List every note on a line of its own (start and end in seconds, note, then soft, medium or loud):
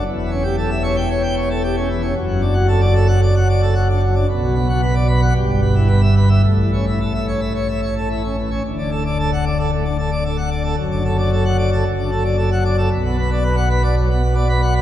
0.04 2.12 E1 medium
0.04 2.12 E2 loud
0.18 0.30 E3 medium
0.30 0.43 C#4 medium
0.43 0.56 G4 medium
0.58 0.70 A4 medium
0.70 0.82 E5 medium
0.83 0.96 C#5 medium
0.97 1.09 G5 loud
1.09 1.22 C#5 medium
1.22 1.35 G5 medium
1.36 1.49 C#5 medium
1.50 1.62 A4 medium
1.64 1.76 G4 medium
1.76 1.88 C#4 medium
1.89 2.02 E3 medium
2.02 2.14 C#4 medium
2.15 4.25 F#1 loud
2.15 4.25 F#2 loud
2.28 2.41 F#3 medium
2.41 2.54 D4 medium
2.54 2.67 F#4 medium
2.68 2.81 A4 medium
2.81 2.94 D5 loud
2.94 3.07 A4 medium
3.07 3.20 F#5 loud
3.22 3.35 D5 medium
3.35 3.48 F#5 medium
3.49 3.61 D5 medium
3.62 3.74 A4 medium
3.75 3.88 F#4 medium
3.89 4.01 D4 medium
4.02 4.14 F#3 medium
4.15 4.27 D4 medium
4.29 5.33 B1 medium
4.29 5.33 B2 loud
4.42 4.54 F#3 medium
4.55 4.67 B3 medium
4.69 4.81 F#4 medium
4.82 4.94 B4 medium
4.95 5.07 D5 medium
5.08 5.21 B4 medium
5.22 5.33 F#5 loud
5.35 6.41 G1 medium
5.35 6.41 G2 medium
5.48 5.61 G3 medium
5.62 5.74 B3 medium
5.75 5.88 E4 medium
5.88 6.01 B4 medium
6.02 6.15 E5 medium
6.16 6.29 B4 medium
6.29 6.42 E5 medium
6.43 8.60 A1 medium
6.43 8.60 A2 medium
6.58 6.71 E3 medium
6.73 6.85 C#4 medium
6.87 6.99 E4 medium
7.01 7.13 A4 medium
7.14 7.26 E5 medium
7.28 7.40 C#5 medium
7.40 7.53 E5 medium
7.55 7.67 C#5 medium
7.68 7.80 E5 medium
7.82 7.94 C#5 medium
7.97 8.09 A4 medium
8.10 8.22 E4 medium
8.24 8.36 C#4 medium
8.38 8.50 E3 medium
8.51 8.63 C#4 medium
8.65 10.74 D1 medium
8.65 10.74 D2 medium
8.78 8.90 D4 medium
8.91 9.03 A4 medium
9.06 9.18 D5 medium
9.19 9.31 A4 medium
9.33 9.45 F#5 loud
9.46 9.57 D5 medium
9.58 9.70 A4 medium
9.72 9.84 A2 medium
9.85 9.97 D4 medium
9.98 10.10 A4 medium
10.12 10.24 D5 medium
10.25 10.37 A4 medium
10.37 10.50 F#5 medium
10.50 10.63 D5 medium
10.64 10.75 A4 medium
10.77 11.83 F#1 medium
10.77 11.83 F#2 medium
10.91 11.03 D4 medium
11.05 11.17 A4 medium
11.19 11.30 D5 medium
11.33 11.44 A4 medium
11.45 11.57 F#5 loud
11.58 11.70 D5 medium
11.73 11.84 A4 medium
11.85 12.88 F#1 medium
11.85 12.88 F#2 medium
11.99 12.10 D4 medium
12.12 12.23 A4 medium
12.25 12.36 D5 medium
12.38 12.50 A4 medium
12.52 12.63 F#5 medium
12.65 12.76 D5 medium
12.78 12.89 A4 medium
12.91 14.82 B1 medium
12.91 14.82 B2 medium
13.05 13.16 B3 medium
13.18 13.30 B4 medium
13.32 13.43 D5 medium
13.43 13.55 B4 medium
13.57 13.69 F#5 loud
13.70 13.82 B4 medium
13.83 13.95 D5 medium
13.96 14.08 F#3 medium
14.10 14.22 B3 medium
14.23 14.35 B4 medium
14.35 14.48 D5 medium
14.49 14.61 B4 medium
14.62 14.74 F#5 medium
14.75 14.82 B4 medium